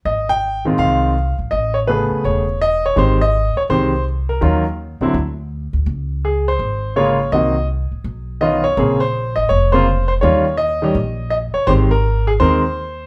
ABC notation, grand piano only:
X:1
M:4/4
L:1/8
Q:"Swing" 1/4=165
K:Ab
V:1 name="Grand piano"
e g2 z f3 z | e ^c =B2 c2 e c | c e2 d c2 z B- | B z6 z |
z2 A c3 d2 | e2 z4 ^d ^c- | ^c =c2 e d c2 c | d2 e4 e d |
c B2 A c4 |]
V:2 name="Grand piano"
z3 [E,A,CF]3 z2 | z2 [^C,=A,=B,^G]3 z3 | [E,A,CG] z3 [E,A,CG] z3 | [E,_G,DF] z2 [=D,G,C_F] z4 |
z6 [D,A,B,F] z | [E,B,C_G] z4 z [^D,=B,^CF] z | [D,B,CA] z4 [D,B,CF] z2 | [E,G,DF] z2 [E,G,DG] z4 |
[E,A,CG] z3 [E,A,CB] z3 |]